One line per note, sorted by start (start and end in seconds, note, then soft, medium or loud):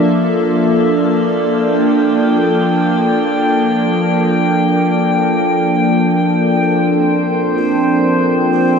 0.00 6.58 F3 medium
0.00 6.70 A#3 medium
0.00 8.79 A#3 medium
0.00 8.79 D4 medium
0.00 6.70 F4 medium
0.00 8.79 A4 medium
0.00 8.79 D5 medium
0.00 0.96 E5 medium
0.89 6.66 G5 medium
6.59 8.79 A#2 medium
6.59 8.79 F3 medium
6.59 8.79 C4 medium
6.59 7.61 A4 soft
6.59 8.79 C5 medium
7.58 8.57 F4 medium
8.53 8.79 A4 medium